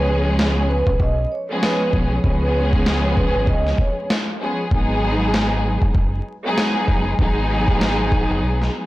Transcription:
Already playing: C#2 F3 G#3 B3 C#4 G#4
0.09 C#5
0.39 snare
0.69 B4
0.87 B1, kick
1.00 B1 D#5, kick
1.32 C#5
1.50 F3 G#3 B3 C#4 G#4
1.63 B4, snare
1.93 B1, kick
2.24 C#2 F3 G#3 B3 C#4 G#4, kick
2.43 B4
2.55 C#5
2.73 kick
2.86 snare
3.17 B4, kick
3.35 G#1
3.47 C#2 D#5, kick
3.67 snare
3.78 C#5, kick
4.10 snare
4.41 F3 G#3 B3 C#4 G#4
4.71 G#1 F#3 G#3 B3 D#4 G#4, kick
5.34 snare
5.82 F#1, kick
5.95 F#1, kick
6.44 F#3 G#3 B3 D#4 G#4
6.58 snare
6.88 F#1, kick
7.18 G#1 F#3 G#3 B3 D#4 G#4, kick
7.68 kick
7.81 snare
8.12 kick
8.30 F#1
8.43 B1
8.62 snare

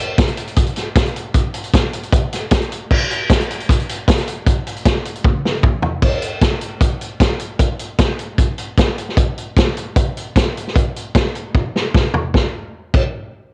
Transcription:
0.18 kick, snare, closed hi-hat
0.27 closed hi-hat
0.37 closed hi-hat
0.47 closed hi-hat
0.56 kick, closed hi-hat
0.67 closed hi-hat
0.76 snare, closed hi-hat
0.96 kick, snare, closed hi-hat
1.06 closed hi-hat
1.16 closed hi-hat
1.34 kick, closed hi-hat
1.54 closed hi-hat
1.64 closed hi-hat
1.74 kick, snare, closed hi-hat
1.93 closed hi-hat
2.03 closed hi-hat
2.12 kick, closed hi-hat
2.33 snare, closed hi-hat
2.51 kick, snare, closed hi-hat
2.62 closed hi-hat
2.72 closed hi-hat
2.91 kick, crash
3.11 closed hi-hat
3.30 kick, snare, closed hi-hat
3.40 closed hi-hat
3.50 closed hi-hat
3.60 closed hi-hat
3.69 kick, closed hi-hat
3.80 closed hi-hat
3.89 closed hi-hat
4.08 kick, snare, closed hi-hat
4.17 snare, closed hi-hat
4.27 closed hi-hat
4.46 kick, closed hi-hat
4.67 closed hi-hat
4.76 closed hi-hat
4.85 kick, snare, closed hi-hat
5.05 closed hi-hat
5.16 closed hi-hat
5.24 kick, high tom
5.45 snare
5.63 kick, mid tom
5.82 floor tom
6.02 kick, crash
6.22 closed hi-hat
6.41 kick, snare, closed hi-hat
6.61 closed hi-hat
6.81 kick, closed hi-hat
7.01 closed hi-hat
7.20 kick, snare, closed hi-hat
7.40 closed hi-hat
7.59 kick, closed hi-hat
7.79 closed hi-hat
7.98 kick, snare, closed hi-hat
8.19 closed hi-hat
8.38 kick, closed hi-hat
8.58 closed hi-hat
8.78 kick, snare, closed hi-hat
8.98 closed hi-hat
9.09 snare
9.17 kick, closed hi-hat
9.38 closed hi-hat
9.57 kick, snare, closed hi-hat
9.77 closed hi-hat
9.96 kick, closed hi-hat
10.17 closed hi-hat
10.36 kick, snare, closed hi-hat
10.57 closed hi-hat
10.67 snare
10.76 kick, closed hi-hat
10.96 closed hi-hat
11.15 kick, snare, closed hi-hat
11.35 closed hi-hat
11.55 kick
11.76 snare
11.94 kick, snare
12.14 floor tom
12.34 kick, snare
12.94 kick, crash

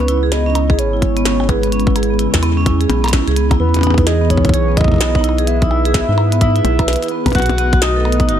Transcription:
Already playing: C#2 C#3 G#3 B3 E4 B4
0.08 E4, closed hi-hat
0.23 G#4
0.32 B3 D#5, snare, closed hi-hat
0.46 C#4
0.55 E4, closed hi-hat, percussion blips
0.70 G#4, kick
0.79 G#1 B3 C#5, closed hi-hat
0.93 E4
1.02 E4, kick, closed hi-hat
1.17 B3, closed hi-hat
1.26 C#4, snare, closed hi-hat
1.40 E4, percussion blips
1.49 G#4 B4, kick, closed hi-hat, percussion blips
1.63 B3, closed hi-hat
1.72 C#4, closed hi-hat
1.80 closed hi-hat
1.87 E4, kick
1.96 G#4, closed hi-hat, percussion blips
2.03 closed hi-hat
2.10 B3
2.19 E4, closed hi-hat
2.34 E2 E4, kick, snare
2.43 B3, closed hi-hat, percussion blips
2.57 C#4
2.66 E4, kick, closed hi-hat
2.81 G#4, closed hi-hat
2.90 B1 B3, closed hi-hat, percussion blips
3.04 C#4, closed hi-hat, percussion blips
3.06 percussion blips
3.08 closed hi-hat, percussion blips
3.09 percussion blips
3.11 E4, kick, snare, percussion blips
3.28 C#2 G#4, closed hi-hat
3.36 B3, closed hi-hat
3.51 E4, kick, closed hi-hat, percussion blips
3.60 E2 E3 B3 E4 G#4 B4
3.74 B3, closed hi-hat, percussion blips
3.77 percussion blips
3.79 percussion blips
3.81 closed hi-hat, percussion blips
3.83 D#4, percussion blips
3.87 percussion blips
3.91 percussion blips
3.94 E4, kick, closed hi-hat, percussion blips
4.07 G#4 D#5, snare, closed hi-hat
4.21 B3
4.30 D#4 C#5, kick, closed hi-hat
4.37 kick
4.45 E4, kick, closed hi-hat
4.49 kick
4.54 B1 G#4 C#5, closed hi-hat
4.68 B3
4.77 E4 D#5, kick, closed hi-hat
4.81 kick
4.84 kick
4.88 kick
4.92 E4, kick
4.94 kick
4.96 kick
4.98 B3, kick, snare, closed hi-hat
5.15 D#4, kick, percussion blips
5.21 E4, closed hi-hat, percussion blips
5.29 percussion blips
5.38 G#4, closed hi-hat
5.47 B3 E5, closed hi-hat
5.62 D#4, kick, closed hi-hat
5.71 E4, percussion blips
5.85 G#4, closed hi-hat
5.94 B3, kick, snare, closed hi-hat
6.09 G#2 E4
6.18 E4, percussion blips
6.32 B3, closed hi-hat
6.41 D#4 E5, kick, closed hi-hat
6.56 E4, closed hi-hat
6.65 B1 E4, closed hi-hat, percussion blips
6.79 B4, kick, closed hi-hat, percussion blips
6.88 B4, snare, closed hi-hat
6.93 closed hi-hat
6.96 closed hi-hat
7.03 E4, closed hi-hat
7.08 B3, closed hi-hat
7.26 B1 B4, kick, closed hi-hat, percussion blips
7.28 closed hi-hat
7.30 closed hi-hat, percussion blips
7.33 closed hi-hat
7.35 B1 A3 B3 F#4 F#5, kick, closed hi-hat
7.39 closed hi-hat, percussion blips
7.42 closed hi-hat
7.46 closed hi-hat
7.50 F#4, closed hi-hat, percussion blips
7.58 B3, closed hi-hat
7.73 F#4, kick, closed hi-hat
7.82 F#4 D#5, snare, closed hi-hat
7.96 A4
8.05 B3, percussion blips
8.12 closed hi-hat
8.20 D#4, kick, closed hi-hat
8.29 F#1 F#4 D#5, closed hi-hat

